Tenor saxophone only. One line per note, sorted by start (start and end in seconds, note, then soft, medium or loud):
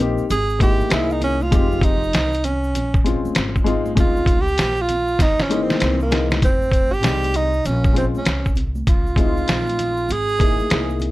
0.31 0.59 G#4 loud
0.62 0.95 G4 loud
0.93 1.13 E4 loud
1.12 1.22 D#4 medium
1.23 1.44 C#4 loud
1.42 1.85 F4 medium
1.84 2.46 D#4 loud
2.45 3.06 C#4 medium
4.00 4.42 F4 loud
4.41 4.83 G4 loud
4.81 5.23 F4 loud
5.22 5.44 D#4 loud
5.42 5.63 C#4 medium
5.62 6.02 C4 medium
6.02 6.30 A#3 medium
6.44 6.95 C4 loud
6.93 7.37 G4 loud
7.36 7.68 D#4 loud
7.66 7.96 C#4 medium
7.97 8.05 C4 medium
8.17 8.55 C#4 medium
8.88 10.13 F4 medium
10.12 11.03 G#4 loud